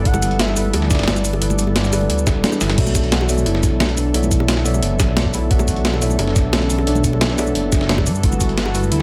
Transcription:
Already playing: analog synth pad E3 B3 A4, tine electric piano G3 E4 A4 B4
0.04 detuned saw bass G1, tine electric piano G3 E4 A4 B4, soft synth lead F#5, kick, closed hi-hat
0.14 high bongo, high conga, shaker
0.22 closed hi-hat, shaker
0.31 detuned saw bass G1, closed hi-hat
0.39 soft synth lead E5, snare, closed hi-hat
0.48 high bongo
0.56 detuned saw bass G1, tine electric piano G3 E4 A4 B4, closed hi-hat, open hi-hat, shaker
0.65 high conga
0.73 detuned saw bass D2, soft synth lead D5, closed hi-hat, high bongo
0.82 snare
0.91 kick, snare, closed hi-hat, shaker
0.95 snare, closed hi-hat
0.99 detuned saw bass G1, snare, closed hi-hat
1.03 snare, closed hi-hat
1.08 snare, closed hi-hat, high bongo, high conga
1.16 closed hi-hat, shaker
1.25 detuned saw bass G1, closed hi-hat, open hi-hat, shaker
1.33 high bongo
1.41 detuned saw bass G1, tine electric piano G3 E4 A4 B4, closed hi-hat
1.50 high conga, shaker
1.59 closed hi-hat, shaker
1.67 detuned saw bass G1, high bongo
1.76 snare, closed hi-hat
1.84 snare, shaker
1.92 detuned saw bass G1, tine electric piano G3 E4 A4 B4, closed hi-hat, open hi-hat, high bongo, shaker
2.01 high conga
2.10 detuned saw bass D2, closed hi-hat
2.18 shaker
2.27 kick, snare, closed hi-hat, high bongo, shaker
2.35 detuned saw bass D1
2.43 tine electric piano G3 E4 A4 B4, soft synth lead D4, snare, closed hi-hat, high conga
2.52 high bongo, shaker
2.61 detuned saw bass G1, soft synth lead E4, snare, closed hi-hat, open hi-hat, shaker
2.70 snare, closed hi-hat
2.77 detuned saw bass B1, analog synth pad D3 E3 A4, tine electric piano B3 A4 C#5 D5 E5, soft synth lead F#4, kick, closed hi-hat, crash
2.87 high conga, shaker
2.95 kick, closed hi-hat, high bongo, shaker
3.04 detuned saw bass B1, closed hi-hat
3.12 soft synth lead F#4, snare, closed hi-hat
3.21 high bongo
3.29 detuned saw bass B1, tine electric piano B3 A4 C#5 D5 E5, closed hi-hat, open hi-hat, shaker
3.37 high conga, shaker
3.46 detuned saw bass F#1, soft synth lead E4, closed hi-hat
3.54 snare, high bongo
3.63 kick, snare, closed hi-hat, shaker
3.72 detuned saw bass B1
3.80 soft synth lead D4, snare, closed hi-hat, high bongo, high conga
3.89 closed hi-hat
3.97 detuned saw bass B1, closed hi-hat, open hi-hat, shaker
4.13 detuned saw bass B1, tine electric piano B3 A4 C#5 D5 E5, soft synth lead E4, closed hi-hat, high bongo
4.23 high conga, shaker
4.31 kick, closed hi-hat, shaker
4.40 detuned saw bass B1, high bongo
4.48 snare, closed hi-hat
4.57 snare
4.64 detuned saw bass B1, tine electric piano B3 A4 C#5 D5 E5, closed hi-hat, open hi-hat, shaker
4.74 high bongo, high conga, shaker
4.82 detuned saw bass F#1, closed hi-hat
5.00 kick, snare, closed hi-hat, high bongo, shaker
5.08 detuned saw bass B1
5.16 tine electric piano B3 A4 C#5 D5 E5, soft synth lead D4, snare, closed hi-hat, high conga
5.25 kick
5.34 detuned saw bass B1, soft synth lead E4, closed hi-hat, open hi-hat, high bongo, shaker
5.50 detuned saw bass B1, tine electric piano B3 A4 C#5 D5 E5, soft synth lead F#4, kick, closed hi-hat
5.59 high bongo, high conga, shaker
5.68 kick, closed hi-hat, shaker
5.76 detuned saw bass B1, closed hi-hat
5.85 snare, closed hi-hat
5.94 high bongo
6.01 detuned saw bass B1, tine electric piano B3 A4 C#5 D5 E5, soft synth lead E4, closed hi-hat, open hi-hat, shaker
6.10 high conga, shaker
6.19 detuned saw bass F#1, soft synth lead D4, closed hi-hat, high bongo
6.28 snare
6.36 kick, snare, closed hi-hat, shaker
6.45 detuned saw bass B1, soft synth lead D4
6.53 soft synth lead C#4, snare, closed hi-hat, high bongo, high conga
6.62 closed hi-hat
6.70 detuned saw bass B1, closed hi-hat, open hi-hat, shaker
6.78 high bongo
6.86 detuned saw bass B1, tine electric piano B3 A4 C#5 D5 E5, soft synth lead D4, closed hi-hat
6.95 high conga, shaker
7.04 kick, closed hi-hat, shaker
7.13 detuned saw bass B1, high bongo
7.21 snare, closed hi-hat
7.30 snare
7.37 detuned saw bass B1, tine electric piano B3 A4 C#5 D5 E5, closed hi-hat, open hi-hat, high bongo, shaker
7.47 high conga, shaker
7.55 detuned saw bass F#1, closed hi-hat
7.72 kick, snare, closed hi-hat, high bongo, shaker
7.81 detuned saw bass F#1, snare
7.89 tine electric piano B3 A4 C#5 D5 E5, soft synth lead D4, snare, closed hi-hat, high conga
7.98 kick, high bongo
8.06 detuned saw bass G2, analog synth pad B3, closed hi-hat, open hi-hat, shaker
8.15 shaker
8.22 detuned saw bass G1, tine electric piano G3 E4 A4 B4, soft synth lead F#4, kick, closed hi-hat
8.32 high conga, shaker
8.40 kick, closed hi-hat, high bongo, shaker
8.49 detuned saw bass G1, closed hi-hat
8.58 soft synth lead F#4, snare, closed hi-hat
8.66 high bongo
8.74 detuned saw bass G1, tine electric piano G3 E4 A4 B4, closed hi-hat, open hi-hat, shaker
8.83 high conga, shaker
8.92 detuned saw bass D2, soft synth lead E4, closed hi-hat

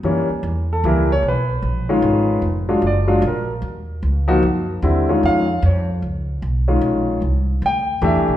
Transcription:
0.03 upright bass F#2, grand piano E3 G3 A#3 C#4
0.29 muted upright bass stroke
0.43 upright bass E2
0.73 grand piano A4
0.84 upright bass C#2, grand piano E3 G3 A#3 E4
0.88 grand piano A#4
1.12 grand piano C#5
1.23 upright bass B1
1.28 grand piano B4
1.63 upright bass A#1
1.89 grand piano D#3 G#3 C#4 F4
2.02 upright bass G#1
2.42 upright bass F1
2.69 grand piano F#3 G#3 D4 F4
2.82 upright bass F#1
2.87 grand piano D5
3.07 grand piano F#3 G#3 D4 F4
3.22 upright bass A#1
3.27 grand piano A#4
3.62 upright bass D#2
4.03 upright bass C#2
4.28 grand piano F3 A#3 D#4 F#4
4.43 upright bass F#2
4.82 upright bass D#2, grand piano D3 G3 C4 E4
5.09 grand piano D#3 G#3 C#4 F4
5.23 upright bass F2, grand piano F5
5.62 upright bass F2, grand piano C#5
6.02 upright bass C#2
6.42 upright bass B1
6.68 grand piano D#3 G#3 C#4 F4
6.81 upright bass A#1
7.22 upright bass C2
7.62 upright bass D2, grand piano G5
8.02 upright bass E2, grand piano E3 A3 D4 G4 E5
8.16 upright bass C2
8.28 upright bass A#1

